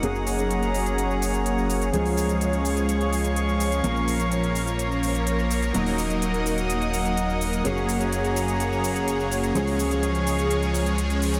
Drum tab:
HH |x-oxxxoxx-oxx-ox|xooxxxoxxxoxx-ox|x-oxxxoxx-oxx-ox|xooxxxoxxxoxx-ox|
SH |xxxxxxxxxxxxxxxx|xxxxxxxxxxxxxxxx|xxxxxxxxxxxxxxxx|xxxxxxxxxxxxxxxx|

HH |x-oxxxoxx-oxx-ox|xooxxxoxxxoxxxox|
SH |xxxxxxxxxxxxxxxx|xxxxxxxxxxxxxxxx|